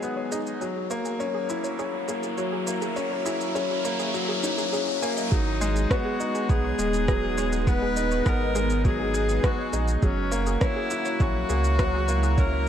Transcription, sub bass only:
0.32 0.56 A#1 medium
0.61 1.16 F#1 medium
1.79 2.03 A#1 medium
2.08 3.51 C#2 medium
3.55 4.43 F#1 medium
4.58 5.28 F#2 medium
5.32 5.87 G#1 loud
6.49 6.74 B1 medium
6.79 8.22 D#1 loud
8.26 9.40 G#1 medium
9.73 9.97 A#1 medium
10.03 10.57 F#1 loud
11.20 11.44 A#1 medium
11.50 12.69 C#2 loud

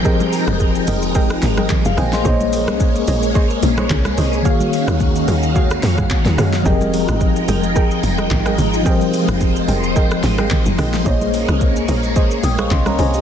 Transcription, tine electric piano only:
0.02 2.20 F3 medium
0.02 2.20 C4 medium
0.02 1.67 G4 medium
0.07 1.68 G#4 medium
0.07 1.68 A#4 medium
0.07 1.69 C5 medium
1.86 1.98 G#4 medium
1.86 1.97 F5 medium
1.98 2.13 C5 medium
1.98 2.12 G#5 medium
2.13 2.28 D#5 medium
2.13 2.39 C6 medium
2.22 4.40 A#3 medium
2.22 4.41 G#4 medium
2.22 4.42 C5 medium
2.28 4.43 C#5 medium
2.28 4.43 D#5 medium
4.42 6.60 D#3 medium
4.42 6.61 A#3 medium
4.42 6.62 F#4 medium
4.47 6.62 G#4 medium
4.47 6.63 C#5 medium
4.47 6.64 F5 medium
6.62 8.80 F3 medium
6.62 8.81 C4 medium
6.62 8.82 G4 medium
6.67 8.82 G#4 medium
6.67 8.83 A#4 medium
6.67 8.84 D#5 medium
8.83 11.00 F3 medium
8.83 11.01 C4 medium
8.83 11.02 G4 medium
8.87 11.03 G#4 medium
8.87 11.03 A#4 medium
8.87 11.04 C5 medium
11.03 13.21 A#3 medium
11.03 12.40 G#4 medium
11.03 12.41 C5 medium
11.09 12.42 C#5 medium
11.09 12.43 D#5 medium
12.44 12.59 G5 medium
12.44 12.58 D#6 medium
12.60 12.71 F5 medium
12.60 12.71 C#6 medium
12.72 12.86 D#5 medium
12.72 12.86 C6 medium
12.87 12.99 C#5 medium
12.87 12.98 A#5 medium
12.99 13.14 C5 medium
12.99 13.13 G#5 medium
13.15 13.21 G4 medium
13.15 13.21 D#5 medium

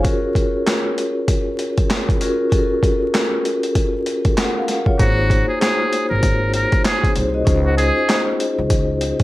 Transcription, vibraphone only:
0.00 1.10 C#4 medium
0.00 1.11 F4 medium
0.00 1.11 F#4 medium
0.00 0.21 C#5 medium
0.04 1.11 G#4 medium
0.04 1.11 A#4 medium
2.21 2.48 C#4 medium
2.21 2.48 F4 medium
2.21 2.48 F#4 medium
2.21 2.49 G#4 medium
2.21 2.49 A#4 loud
2.50 3.57 C#4 medium
2.50 3.58 F4 medium
2.50 3.58 F#4 medium
2.50 3.58 G#4 medium
2.50 2.60 A4 medium
2.58 3.62 A#4 medium
4.39 4.56 A#4 medium
4.39 4.56 F#5 medium
4.57 4.86 F5 medium
4.87 5.16 F4 medium
4.87 5.16 C#5 medium
4.99 6.06 A#3 medium
4.99 6.06 D#4 medium
4.99 6.06 F#4 medium
4.99 6.07 G#4 medium
4.99 6.07 C5 medium
7.02 7.15 C4 medium
7.02 7.15 G#4 medium
7.16 7.34 D#4 medium
7.16 7.33 C5 medium
7.34 7.64 F#4 medium
7.34 7.64 D#5 medium
7.45 8.53 C#4 medium
7.45 8.53 D#4 medium
7.45 8.53 F4 medium
7.45 8.53 G#4 medium
7.45 8.54 C5 medium

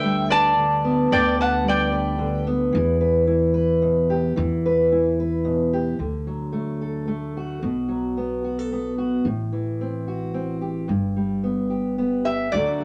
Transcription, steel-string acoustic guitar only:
0.00 0.55 D3 medium
0.00 1.63 G3 medium
0.00 0.29 B4 medium
0.30 1.38 B4 medium
0.56 1.08 D3 medium
0.84 2.47 B3 medium
1.11 2.17 D3 medium
1.39 1.92 B4 medium
1.63 2.72 G3 medium
1.92 3.00 B4 medium
2.18 2.70 D3 medium
2.47 3.27 B3 medium
2.72 4.35 E3 medium
3.01 3.53 B4 medium
3.27 4.33 E4 medium
3.54 4.33 B4 medium
3.82 4.33 B2 medium
4.10 4.34 G4 medium
4.36 5.99 E3 medium
4.66 5.19 B4 medium
4.92 5.97 E4 medium
5.20 5.97 B4 medium
5.45 5.96 B2 medium
5.73 5.97 G4 medium
5.99 7.59 D3 medium
6.27 7.59 F#3 soft
6.53 7.06 A3 soft
6.81 7.36 A4 soft
7.08 7.62 A3 medium
7.37 8.43 F#4 soft
7.62 9.26 B2 medium
7.88 9.22 F#3 soft
8.17 8.71 B3 soft
8.44 8.59 F#4 soft
8.59 8.98 A4 soft
8.72 9.23 B3 medium
8.98 9.26 F#4 soft
9.26 10.86 A2 medium
9.52 10.89 E3 soft
9.81 10.33 C4 soft
10.08 10.61 F#4 soft
10.34 10.86 C4 medium
10.61 10.86 G4 soft
10.88 12.49 G2 medium
11.16 12.49 G3 soft
11.44 11.97 B3 soft
11.70 12.24 G4 soft
11.98 12.49 B3 medium
12.25 12.49 G4 soft
12.53 12.84 D3 medium
12.53 12.84 F#3 medium
12.53 12.79 A3 medium
12.53 12.84 D4 medium
12.53 12.84 F#4 medium
12.80 12.84 A3 medium

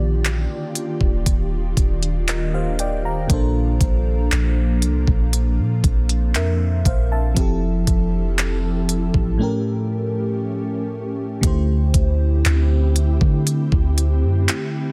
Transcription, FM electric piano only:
0.00 3.25 D#3 medium
0.00 3.25 A#3 medium
0.00 3.26 F4 medium
0.00 3.27 G4 medium
0.00 2.26 D5 medium
2.29 2.53 A#4 medium
2.29 2.53 D#5 medium
2.54 2.78 C5 medium
2.54 2.78 F5 medium
2.80 3.04 D5 medium
2.80 3.03 G5 medium
3.05 3.53 F5 medium
3.05 3.53 A#5 medium
3.27 7.31 A#2 medium
3.27 7.32 A#3 medium
3.27 7.33 D4 medium
3.32 6.32 A4 medium
3.32 6.33 C5 medium
6.36 6.84 A#4 medium
6.36 6.83 E5 medium
6.86 7.11 C5 medium
6.86 7.10 F5 medium
7.12 7.60 E5 medium
7.12 7.60 A5 medium
7.35 9.35 F3 medium
7.35 9.36 C4 medium
7.35 9.36 E4 medium
7.39 9.37 G4 medium
7.39 9.38 A4 medium
9.38 11.38 A2 medium
9.38 11.39 A3 medium
9.38 11.40 C#4 medium
9.42 11.40 G4 medium
9.42 11.41 A#4 medium
11.41 14.92 D3 medium
11.41 14.92 A3 medium
11.41 14.92 E4 medium
11.45 14.92 G4 medium
11.45 14.92 C5 medium

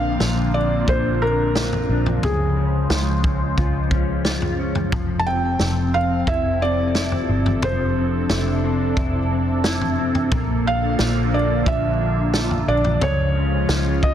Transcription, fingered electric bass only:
0.00 0.17 A#1 loud
0.20 0.85 A#1 medium
0.88 1.85 A#1 loud
1.89 2.21 A#1 medium
2.23 2.87 C#2 medium
2.90 3.54 C#2 medium
3.58 4.88 C#2 loud
4.92 5.56 F1 medium
5.60 6.24 F1 medium
6.27 7.24 F1 loud
7.29 7.61 G1 medium
7.63 8.26 F1 medium
8.30 8.94 F1 medium
8.97 10.28 F1 loud
10.32 10.96 A#1 loud
10.99 11.63 A#1 medium
11.66 12.64 A#1 loud
12.68 13.00 A#1 medium
13.02 13.66 C#2 medium
13.69 14.14 C#2 medium

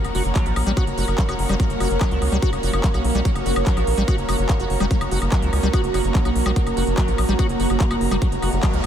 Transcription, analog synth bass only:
0.04 0.12 F#1 medium
0.15 0.22 F#1 loud
0.25 0.32 F#1 medium
0.46 0.53 A#1 medium
0.56 0.63 A#1 loud
0.67 0.74 A#1 medium
0.87 0.94 F#1 medium
0.98 1.05 F#1 loud
1.08 1.15 F#1 medium
1.29 1.36 F#1 medium
1.39 1.46 F#1 loud
1.49 1.56 F#1 loud
1.70 1.77 F#1 medium
1.80 1.88 F#1 loud
1.91 1.98 F#1 medium
2.11 2.19 C#2 medium
2.22 2.29 C#2 medium
2.32 2.39 C#2 medium
2.53 2.60 F#1 medium
2.63 2.70 F#1 loud
2.73 2.81 F#1 medium
2.94 3.01 B1 medium
3.04 3.12 B1 loud
3.15 3.22 B1 loud
3.35 3.43 F#1 medium
3.46 3.53 F#1 loud
3.56 3.63 F#1 medium
3.77 3.84 A#1 medium
3.87 3.94 A#1 loud
3.98 4.05 A#1 medium
4.18 4.25 F#1 medium
4.29 4.36 F#1 loud
4.39 4.46 F#1 medium
4.60 4.67 F#1 medium
4.70 4.77 F#1 loud
4.80 4.88 F#1 medium
5.01 5.08 F#1 medium
5.11 5.19 F#1 loud
5.22 5.29 F#1 medium
5.42 5.50 C#2 medium
5.53 5.60 C#2 loud
5.63 5.70 C#2 medium
5.84 5.91 F#1 medium
5.94 6.01 F#1 loud
6.05 6.12 F#1 medium
6.25 6.32 B1 medium
6.36 6.43 B1 medium
6.46 6.53 B1 loud
6.67 6.74 F#1 medium
6.77 6.84 F#1 loud
6.87 6.94 F#1 loud
7.08 7.15 A#1 medium
7.18 7.25 A#1 loud
7.29 7.36 A#1 medium
7.49 7.57 F#1 medium
7.60 7.67 F#1 loud
7.70 7.77 F#1 medium
7.91 7.98 F#1 medium
8.01 8.08 F#1 loud
8.11 8.19 F#1 medium
8.32 8.39 F#1 medium
8.42 8.50 F#1 loud
8.53 8.60 F#1 medium
8.73 8.81 C#2 medium

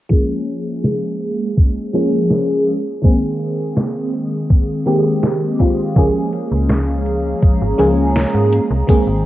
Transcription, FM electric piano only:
0.09 1.89 F3 medium
0.09 1.89 G#3 medium
0.09 1.90 A#3 medium
0.09 1.90 C#4 medium
0.09 1.90 G#4 medium
1.93 2.65 F3 medium
1.93 2.65 G#3 medium
1.93 2.65 A#3 medium
1.93 2.65 C#4 medium
1.93 2.65 G#4 loud
3.02 4.81 D#3 medium
3.02 4.82 G#3 medium
3.02 4.82 A#3 medium
3.02 4.83 C4 medium
3.02 4.83 G#4 medium
4.86 5.55 D#3 medium
4.86 5.55 G#3 medium
4.86 5.55 A#3 medium
4.86 5.56 C4 medium
4.86 5.56 G4 medium
5.59 5.92 D#3 medium
5.59 5.92 G#3 medium
5.59 5.92 A#3 medium
5.59 5.92 C4 medium
5.59 5.92 F4 medium
5.95 7.74 F3 medium
5.95 7.75 G#3 medium
5.95 7.75 A#3 medium
5.95 7.75 C#4 medium
5.95 7.76 G#4 medium
7.78 8.50 F3 medium
7.78 8.50 G#3 medium
7.78 8.50 A#3 medium
7.78 8.50 C#4 medium
7.78 8.50 G#4 loud
8.87 9.26 D#3 medium
8.87 9.26 G#3 medium
8.87 9.26 A#3 medium
8.87 9.26 C4 medium
8.87 9.26 G#4 medium

